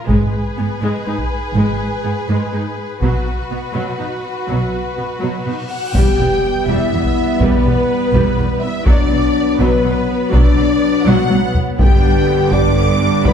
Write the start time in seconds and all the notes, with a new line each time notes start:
0.08 G#1 G#2 G#3 G#4 B4, taiko
0.57 G#2 B3
0.82 G#2 G#3
1.06 G#2 D#4
1.18 taiko
1.55 G#1 G#2 G#3
2.04 G#2 B3
2.28 G#2 G#3
2.53 G#2 D#4
3.01 B1 B2 F#3 F#4 B4, taiko
3.50 B2 B3
3.74 B2 F#3
3.98 B2 D#4
4.47 B1 B2 F#3, cymbal swell
4.97 B2 B3
5.21 B2 F#3
5.46 B2 D#4
5.69 F#4 F#5
5.94 E1 E2 G3 B3 G4 G5, taiko, impact
6.18 E1 E2 G3
6.67 E1 E2 G3 E4 E5
6.92 E1 E2 G3
7.04 taiko
7.40 E1 E2 G3 B3 B4, taiko
7.64 E1 E2 G3
8.13 E1 E2 G3, taiko
8.37 E1 E2 G3
8.61 E4 E5
8.86 B1 B2 F#3 B3 D4 D5, taiko
9.10 B1 B2 F#3
9.59 B1 B2 F#3 B3 B4, taiko
9.84 B1 B2 F#3
10.31 B1 B2 F#3 D4 D5, taiko
10.57 B1 B2 F#3
11.05 B1 B2 F#3 F#4 F#5, taiko high
11.30 B1 B2 F#3, taiko high
11.55 taiko low
11.77 G1 G2 D3 G3 B3 G4 G5, taiko
12.01 G3 D4
12.26 D3 B3
12.52 G3 D4 D5 D6, taiko
12.76 D3 B3
13.00 G3 D4
13.24 D3 B3 B4 B5, taiko